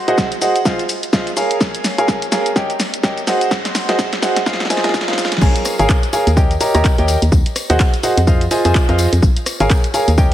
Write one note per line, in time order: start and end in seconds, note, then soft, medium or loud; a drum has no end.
0.08 0.26 F#4 medium
0.08 0.26 G#4 medium
0.08 0.26 C5 medium
0.08 0.26 D#5 medium
0.08 0.26 F#5 loud
0.08 closed hi-hat medium
0.08 cabasa soft
0.18 kick loud
0.18 snare medium
0.18 cabasa soft
0.32 closed hi-hat soft
0.32 cabasa soft
0.41 0.56 F#4 medium
0.41 0.56 G#4 medium
0.41 0.56 C5 medium
0.41 0.56 D#5 medium
0.41 0.56 F#5 medium
0.41 open hi-hat medium
0.41 cabasa medium
0.56 closed hi-hat medium
0.56 cabasa soft
0.65 0.79 F4 medium
0.65 0.79 G#4 medium
0.65 0.79 C5 medium
0.65 0.79 D#5 medium
0.65 0.79 F5 medium
0.65 kick loud
0.65 snare medium
0.65 cabasa soft
0.79 closed hi-hat soft
0.79 cabasa soft
0.89 open hi-hat loud
0.89 cabasa medium
1.03 closed hi-hat medium
1.03 cabasa soft
1.13 1.27 F4 medium
1.13 1.27 G#4 medium
1.13 1.27 C5 medium
1.13 1.27 D#5 medium
1.13 1.27 F5 medium
1.13 kick loud
1.13 snare medium
1.13 cabasa soft
1.27 closed hi-hat soft
1.27 cabasa soft
1.37 1.95 G#4 medium
1.37 1.95 A#4 medium
1.37 1.95 C#5 medium
1.37 1.95 F5 medium
1.37 1.95 G#5 medium
1.37 open hi-hat medium
1.37 cabasa medium
1.51 closed hi-hat medium
1.51 cabasa soft
1.61 kick loud
1.61 snare medium
1.61 cabasa soft
1.75 closed hi-hat medium
1.75 cabasa soft
1.84 snare medium
1.84 open hi-hat loud
1.84 cabasa medium
1.98 2.17 G#4 medium
1.98 2.17 A#4 medium
1.98 2.17 C#5 medium
1.98 2.17 F5 medium
1.98 2.17 G#5 medium
1.98 closed hi-hat medium
1.98 cabasa soft
2.08 kick loud
2.08 snare medium
2.08 cabasa soft
2.22 closed hi-hat medium
2.22 cabasa soft
2.32 2.46 G#4 medium
2.32 2.46 A#4 medium
2.32 2.46 C#5 medium
2.32 2.46 F5 medium
2.32 2.46 G#5 medium
2.32 snare medium
2.32 open hi-hat medium
2.32 cabasa medium
2.46 closed hi-hat medium
2.46 cabasa soft
2.56 2.70 G4 medium
2.56 2.70 A#4 medium
2.56 2.70 C#5 medium
2.56 2.70 D#5 medium
2.56 2.70 G5 medium
2.56 kick loud
2.56 snare medium
2.56 cabasa soft
2.70 closed hi-hat soft
2.70 cabasa soft
2.80 snare medium
2.80 open hi-hat loud
2.80 cabasa medium
2.94 closed hi-hat medium
2.94 cabasa soft
3.03 3.18 G4 medium
3.03 3.18 A#4 medium
3.03 3.18 C#5 medium
3.03 3.18 D#5 medium
3.03 3.18 G5 medium
3.03 kick loud
3.03 snare medium
3.03 cabasa soft
3.17 closed hi-hat soft
3.17 cabasa soft
3.27 3.86 F#4 medium
3.27 3.86 G#4 medium
3.27 3.86 C5 medium
3.27 3.86 D#5 medium
3.27 3.85 F#5 medium
3.27 snare medium
3.27 open hi-hat medium
3.27 cabasa medium
3.41 closed hi-hat medium
3.41 cabasa soft
3.51 kick loud
3.51 snare medium
3.51 cabasa soft
3.65 snare medium
3.65 closed hi-hat medium
3.65 cabasa soft
3.75 snare medium
3.75 open hi-hat loud
3.75 cabasa medium
3.89 4.07 F#4 medium
3.89 4.07 G#4 medium
3.89 4.07 C5 medium
3.89 4.07 D#5 medium
3.89 4.07 F#5 loud
3.89 snare medium
3.89 closed hi-hat medium
3.89 cabasa soft
3.99 kick loud
3.99 snare loud
3.99 cabasa soft
4.13 snare medium
4.13 closed hi-hat medium
4.13 cabasa soft
4.22 4.37 F#4 medium
4.22 4.37 G#4 medium
4.22 4.37 C5 medium
4.22 4.37 D#5 medium
4.22 4.37 F#5 medium
4.22 snare loud
4.22 open hi-hat medium
4.22 cabasa medium
4.36 snare medium
4.36 closed hi-hat medium
4.36 cabasa soft
4.46 4.60 F4 medium
4.46 4.60 G#4 medium
4.46 4.60 C5 medium
4.46 4.60 D#5 medium
4.46 4.60 F5 medium
4.46 kick loud
4.46 snare loud
4.46 cabasa soft
4.53 snare medium
4.60 snare medium
4.60 closed hi-hat soft
4.60 cabasa soft
4.65 snare medium
4.70 4.82 F4 medium
4.70 4.82 G#4 medium
4.70 4.82 C5 medium
4.70 4.82 D#5 medium
4.70 4.82 G#5 medium
4.70 snare loud
4.70 open hi-hat loud
4.70 cabasa medium
4.77 snare medium
4.84 5.03 F4 medium
4.84 5.03 G#4 medium
4.84 5.03 C5 medium
4.84 5.03 D#5 medium
4.84 5.03 G#5 loud
4.84 snare loud
4.84 closed hi-hat medium
4.84 cabasa soft
4.89 snare loud
4.94 kick loud
4.94 snare loud
4.94 cabasa soft
5.01 snare medium
5.08 5.26 F4 medium
5.08 5.26 G#4 medium
5.08 5.26 C5 medium
5.08 5.26 D#5 medium
5.08 5.26 F5 medium
5.08 snare loud
5.08 closed hi-hat soft
5.08 cabasa soft
5.13 snare loud
5.18 snare loud
5.18 open hi-hat medium
5.18 cabasa medium
5.25 snare loud
5.32 snare medium
5.32 closed hi-hat medium
5.32 cabasa soft
5.37 snare loud
5.41 5.53 A#1 loud
5.41 5.74 G#4 loud
5.41 5.74 A#4 medium
5.41 5.74 C#5 medium
5.41 5.74 F5 medium
5.41 5.74 G#5 loud
5.41 kick loud
5.41 crash loud
5.41 tambourine medium
5.41 cabasa soft
5.55 closed hi-hat medium
5.55 tambourine soft
5.55 cabasa soft
5.65 cross-stick medium
5.65 open hi-hat loud
5.65 tambourine loud
5.65 cabasa medium
5.79 5.87 G#1 medium
5.79 5.98 G#4 medium
5.79 5.98 A#4 medium
5.79 5.98 C#5 medium
5.79 5.98 F5 medium
5.79 5.98 G#5 loud
5.79 closed hi-hat medium
5.79 tambourine soft
5.79 cabasa soft
5.89 kick loud
5.89 clap loud
5.89 tambourine soft
5.89 cabasa soft
6.03 closed hi-hat medium
6.03 tambourine soft
6.03 cabasa soft
6.13 6.27 G#4 medium
6.13 6.27 A#4 medium
6.13 6.27 C#5 medium
6.13 6.27 F5 medium
6.13 6.27 G#5 medium
6.13 open hi-hat medium
6.13 tambourine loud
6.13 cabasa medium
6.27 6.57 D#2 loud
6.27 closed hi-hat medium
6.27 tambourine soft
6.27 cabasa soft
6.37 6.51 G4 medium
6.37 6.51 A#4 medium
6.37 6.51 C#5 medium
6.37 6.51 D#5 medium
6.37 6.51 G5 medium
6.37 kick loud
6.37 tambourine medium
6.37 cabasa soft
6.51 closed hi-hat soft
6.51 tambourine soft
6.51 cabasa soft
6.61 6.72 G4 medium
6.61 6.73 A#4 medium
6.61 6.73 C#5 medium
6.61 6.73 D#5 medium
6.61 6.72 A#5 medium
6.61 open hi-hat loud
6.61 tambourine medium
6.61 cabasa medium
6.74 6.82 D#2 medium
6.74 6.93 G4 medium
6.74 6.93 A#4 medium
6.74 6.93 C#5 medium
6.74 6.93 D#5 medium
6.74 6.93 A#5 loud
6.74 cross-stick medium
6.74 closed hi-hat medium
6.74 tambourine soft
6.74 cabasa soft
6.84 kick loud
6.84 clap loud
6.84 tambourine medium
6.84 cabasa soft
6.98 7.16 D#2 loud
6.98 7.17 G4 medium
6.98 7.17 A#4 medium
6.98 7.17 C#5 medium
6.98 7.17 D#5 medium
6.98 7.17 G5 medium
6.98 closed hi-hat soft
6.98 tambourine soft
6.98 cabasa soft
7.08 open hi-hat loud
7.08 tambourine medium
7.08 cabasa medium
7.22 7.30 D#2 loud
7.22 closed hi-hat medium
7.22 tambourine soft
7.22 cabasa soft
7.32 7.43 D#2 loud
7.32 kick loud
7.32 tambourine soft
7.32 cabasa soft
7.46 closed hi-hat medium
7.46 tambourine soft
7.46 cabasa soft
7.56 cross-stick medium
7.56 open hi-hat loud
7.56 tambourine loud
7.56 cabasa medium
7.70 7.78 D#2 medium
7.70 7.88 F#4 medium
7.70 7.88 G#4 medium
7.70 7.88 C5 medium
7.70 7.88 D#5 medium
7.70 7.88 F#5 loud
7.70 closed hi-hat medium
7.70 cabasa soft
7.79 kick loud
7.79 clap loud
7.79 tambourine medium
7.79 cabasa soft
7.94 closed hi-hat medium
7.94 tambourine soft
7.94 cabasa soft
8.03 8.18 F#4 medium
8.03 8.18 G#4 medium
8.03 8.18 C5 medium
8.03 8.18 D#5 medium
8.03 8.18 F#5 medium
8.03 open hi-hat loud
8.03 tambourine loud
8.03 cabasa medium
8.17 8.48 F2 loud
8.17 closed hi-hat medium
8.17 tambourine soft
8.17 cabasa soft
8.27 8.41 F4 medium
8.27 8.41 G#4 medium
8.27 8.41 C5 medium
8.27 8.41 D#5 medium
8.27 8.41 F5 medium
8.27 kick loud
8.27 tambourine medium
8.27 cabasa soft
8.41 closed hi-hat soft
8.41 tambourine soft
8.41 cabasa soft
8.51 8.63 F4 medium
8.51 8.63 G#4 medium
8.51 8.63 C5 medium
8.51 8.63 D#5 medium
8.51 8.63 G#5 medium
8.51 open hi-hat loud
8.51 tambourine medium
8.51 cabasa medium
8.64 8.73 F2 medium
8.64 8.84 F4 loud
8.64 8.84 G#4 medium
8.64 8.84 C5 medium
8.64 8.84 D#5 medium
8.64 8.84 G#5 loud
8.64 cross-stick medium
8.64 closed hi-hat medium
8.64 tambourine soft
8.64 cabasa soft
8.75 kick loud
8.75 clap loud
8.75 tambourine medium
8.75 cabasa soft
8.89 9.07 F2 loud
8.89 9.07 F4 medium
8.89 9.07 G#4 medium
8.89 9.07 C5 medium
8.89 9.07 D#5 medium
8.89 9.07 F5 medium
8.89 cross-stick medium
8.89 closed hi-hat soft
8.89 tambourine soft
8.89 cabasa soft
8.98 open hi-hat medium
8.98 tambourine loud
8.98 cabasa medium
9.13 9.20 F2 loud
9.13 closed hi-hat medium
9.13 tambourine soft
9.13 cabasa soft
9.22 9.34 A#1 loud
9.22 kick loud
9.22 tambourine medium
9.22 cabasa soft
9.37 closed hi-hat medium
9.37 tambourine soft
9.37 cabasa soft
9.46 cross-stick medium
9.46 open hi-hat loud
9.46 tambourine loud
9.46 cabasa medium
9.60 9.68 G#1 medium
9.60 9.79 G#4 medium
9.60 9.79 A#4 medium
9.60 9.79 C#5 medium
9.60 9.79 F5 medium
9.60 9.79 G#5 medium
9.60 closed hi-hat medium
9.60 tambourine soft
9.60 cabasa soft
9.70 kick loud
9.70 clap loud
9.70 tambourine medium
9.70 cabasa soft
9.84 closed hi-hat soft
9.84 tambourine soft
9.84 cabasa soft
9.94 10.08 G#4 medium
9.94 10.08 A#4 medium
9.94 10.08 C#5 medium
9.94 10.08 F5 medium
9.94 10.08 G#5 medium
9.94 open hi-hat loud
9.94 tambourine medium
9.94 cabasa medium
10.08 10.34 D#2 loud
10.08 closed hi-hat medium
10.08 tambourine soft
10.08 cabasa soft
10.18 10.32 G4 medium
10.18 10.32 A#4 medium
10.18 10.32 C#5 medium
10.18 10.32 D#5 medium
10.18 10.32 G5 medium
10.18 kick loud
10.18 tambourine medium
10.18 cabasa soft